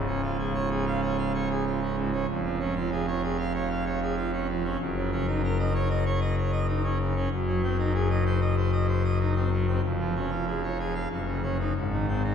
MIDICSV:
0, 0, Header, 1, 2, 480
1, 0, Start_track
1, 0, Key_signature, -5, "major"
1, 0, Tempo, 629591
1, 1744, Time_signature, 4, 2, 24, 8
1, 7013, Tempo, 639659
1, 9376, End_track
2, 0, Start_track
2, 0, Title_t, "Pipe organ"
2, 0, Program_c, 0, 19
2, 0, Note_on_c, 0, 25, 94
2, 0, Note_on_c, 0, 37, 89
2, 54, Note_on_c, 0, 61, 73
2, 162, Note_off_c, 0, 61, 0
2, 173, Note_on_c, 0, 65, 79
2, 282, Note_off_c, 0, 65, 0
2, 296, Note_on_c, 0, 68, 76
2, 405, Note_off_c, 0, 68, 0
2, 417, Note_on_c, 0, 73, 88
2, 526, Note_off_c, 0, 73, 0
2, 539, Note_on_c, 0, 68, 84
2, 648, Note_off_c, 0, 68, 0
2, 662, Note_on_c, 0, 77, 111
2, 770, Note_off_c, 0, 77, 0
2, 783, Note_on_c, 0, 73, 84
2, 891, Note_off_c, 0, 73, 0
2, 901, Note_on_c, 0, 77, 83
2, 1010, Note_off_c, 0, 77, 0
2, 1027, Note_on_c, 0, 73, 87
2, 1133, Note_off_c, 0, 73, 0
2, 1146, Note_on_c, 0, 68, 83
2, 1253, Note_off_c, 0, 68, 0
2, 1270, Note_on_c, 0, 65, 79
2, 1375, Note_off_c, 0, 65, 0
2, 1385, Note_on_c, 0, 61, 67
2, 1492, Note_off_c, 0, 61, 0
2, 1500, Note_on_c, 0, 44, 80
2, 1609, Note_off_c, 0, 44, 0
2, 1621, Note_on_c, 0, 61, 77
2, 1714, Note_off_c, 0, 25, 0
2, 1716, Note_off_c, 0, 37, 0
2, 1724, Note_off_c, 0, 61, 0
2, 1745, Note_on_c, 0, 29, 92
2, 1745, Note_on_c, 0, 41, 98
2, 1860, Note_on_c, 0, 53, 77
2, 1968, Note_off_c, 0, 53, 0
2, 1982, Note_on_c, 0, 61, 73
2, 2090, Note_off_c, 0, 61, 0
2, 2104, Note_on_c, 0, 65, 86
2, 2211, Note_off_c, 0, 65, 0
2, 2222, Note_on_c, 0, 68, 84
2, 2330, Note_off_c, 0, 68, 0
2, 2342, Note_on_c, 0, 73, 93
2, 2450, Note_off_c, 0, 73, 0
2, 2459, Note_on_c, 0, 68, 91
2, 2568, Note_off_c, 0, 68, 0
2, 2578, Note_on_c, 0, 77, 107
2, 2687, Note_off_c, 0, 77, 0
2, 2700, Note_on_c, 0, 73, 87
2, 2808, Note_off_c, 0, 73, 0
2, 2823, Note_on_c, 0, 77, 85
2, 2930, Note_off_c, 0, 77, 0
2, 2940, Note_on_c, 0, 73, 85
2, 3048, Note_off_c, 0, 73, 0
2, 3062, Note_on_c, 0, 68, 89
2, 3169, Note_off_c, 0, 68, 0
2, 3177, Note_on_c, 0, 65, 85
2, 3285, Note_off_c, 0, 65, 0
2, 3301, Note_on_c, 0, 61, 74
2, 3408, Note_off_c, 0, 61, 0
2, 3421, Note_on_c, 0, 53, 81
2, 3528, Note_off_c, 0, 53, 0
2, 3541, Note_on_c, 0, 61, 81
2, 3631, Note_off_c, 0, 41, 0
2, 3632, Note_off_c, 0, 29, 0
2, 3644, Note_off_c, 0, 61, 0
2, 3662, Note_on_c, 0, 30, 102
2, 3663, Note_on_c, 0, 42, 101
2, 3784, Note_on_c, 0, 49, 80
2, 3891, Note_off_c, 0, 49, 0
2, 3902, Note_on_c, 0, 61, 81
2, 4010, Note_off_c, 0, 61, 0
2, 4021, Note_on_c, 0, 63, 85
2, 4129, Note_off_c, 0, 63, 0
2, 4145, Note_on_c, 0, 70, 84
2, 4251, Note_off_c, 0, 70, 0
2, 4263, Note_on_c, 0, 75, 124
2, 4370, Note_off_c, 0, 75, 0
2, 4380, Note_on_c, 0, 73, 96
2, 4487, Note_off_c, 0, 73, 0
2, 4498, Note_on_c, 0, 75, 91
2, 4605, Note_off_c, 0, 75, 0
2, 4618, Note_on_c, 0, 73, 95
2, 4725, Note_off_c, 0, 73, 0
2, 4735, Note_on_c, 0, 75, 83
2, 4842, Note_off_c, 0, 75, 0
2, 4858, Note_on_c, 0, 73, 92
2, 4964, Note_off_c, 0, 73, 0
2, 4973, Note_on_c, 0, 75, 76
2, 5081, Note_off_c, 0, 75, 0
2, 5092, Note_on_c, 0, 63, 87
2, 5201, Note_off_c, 0, 63, 0
2, 5211, Note_on_c, 0, 61, 78
2, 5320, Note_off_c, 0, 61, 0
2, 5334, Note_on_c, 0, 49, 80
2, 5442, Note_off_c, 0, 49, 0
2, 5457, Note_on_c, 0, 61, 73
2, 5546, Note_off_c, 0, 30, 0
2, 5546, Note_off_c, 0, 42, 0
2, 5559, Note_off_c, 0, 61, 0
2, 5576, Note_on_c, 0, 30, 96
2, 5576, Note_on_c, 0, 42, 88
2, 5698, Note_on_c, 0, 54, 81
2, 5804, Note_off_c, 0, 54, 0
2, 5817, Note_on_c, 0, 60, 73
2, 5923, Note_off_c, 0, 60, 0
2, 5937, Note_on_c, 0, 63, 83
2, 6043, Note_off_c, 0, 63, 0
2, 6057, Note_on_c, 0, 68, 87
2, 6163, Note_off_c, 0, 68, 0
2, 6177, Note_on_c, 0, 75, 112
2, 6283, Note_off_c, 0, 75, 0
2, 6298, Note_on_c, 0, 72, 93
2, 6404, Note_off_c, 0, 72, 0
2, 6414, Note_on_c, 0, 75, 83
2, 6521, Note_off_c, 0, 75, 0
2, 6531, Note_on_c, 0, 72, 77
2, 6640, Note_off_c, 0, 72, 0
2, 6650, Note_on_c, 0, 75, 78
2, 6760, Note_off_c, 0, 75, 0
2, 6773, Note_on_c, 0, 72, 82
2, 6882, Note_off_c, 0, 72, 0
2, 6895, Note_on_c, 0, 75, 79
2, 7003, Note_off_c, 0, 75, 0
2, 7014, Note_on_c, 0, 63, 78
2, 7121, Note_off_c, 0, 63, 0
2, 7129, Note_on_c, 0, 60, 70
2, 7238, Note_off_c, 0, 60, 0
2, 7251, Note_on_c, 0, 54, 75
2, 7358, Note_off_c, 0, 54, 0
2, 7372, Note_on_c, 0, 60, 76
2, 7462, Note_off_c, 0, 30, 0
2, 7462, Note_off_c, 0, 42, 0
2, 7474, Note_off_c, 0, 60, 0
2, 7488, Note_on_c, 0, 41, 84
2, 7490, Note_on_c, 0, 29, 87
2, 7611, Note_on_c, 0, 53, 78
2, 7718, Note_off_c, 0, 53, 0
2, 7731, Note_on_c, 0, 61, 70
2, 7838, Note_off_c, 0, 61, 0
2, 7844, Note_on_c, 0, 65, 76
2, 7953, Note_off_c, 0, 65, 0
2, 7969, Note_on_c, 0, 68, 79
2, 8076, Note_off_c, 0, 68, 0
2, 8092, Note_on_c, 0, 73, 81
2, 8197, Note_off_c, 0, 73, 0
2, 8210, Note_on_c, 0, 68, 79
2, 8315, Note_off_c, 0, 68, 0
2, 8327, Note_on_c, 0, 77, 95
2, 8416, Note_off_c, 0, 29, 0
2, 8416, Note_off_c, 0, 41, 0
2, 8428, Note_off_c, 0, 77, 0
2, 8442, Note_on_c, 0, 42, 81
2, 8443, Note_on_c, 0, 30, 80
2, 8563, Note_on_c, 0, 49, 64
2, 8672, Note_off_c, 0, 49, 0
2, 8686, Note_on_c, 0, 61, 66
2, 8794, Note_off_c, 0, 61, 0
2, 8813, Note_on_c, 0, 63, 89
2, 8912, Note_off_c, 0, 30, 0
2, 8912, Note_off_c, 0, 42, 0
2, 8914, Note_off_c, 0, 63, 0
2, 8931, Note_on_c, 0, 32, 84
2, 8931, Note_on_c, 0, 44, 80
2, 9055, Note_on_c, 0, 51, 58
2, 9162, Note_off_c, 0, 51, 0
2, 9178, Note_on_c, 0, 60, 60
2, 9284, Note_off_c, 0, 60, 0
2, 9295, Note_on_c, 0, 63, 82
2, 9376, Note_off_c, 0, 32, 0
2, 9376, Note_off_c, 0, 44, 0
2, 9376, Note_off_c, 0, 63, 0
2, 9376, End_track
0, 0, End_of_file